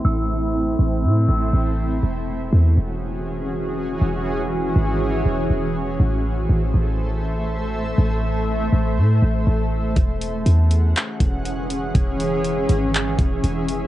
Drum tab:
HH |--------|--------|--------|--------|
CP |--------|--------|--------|--------|
BD |--------|--------|--------|--------|

HH |--------|xxxxxxxx|xxxxxxxx|
CP |--------|----x---|----x---|
BD |--------|o----o--|o----o--|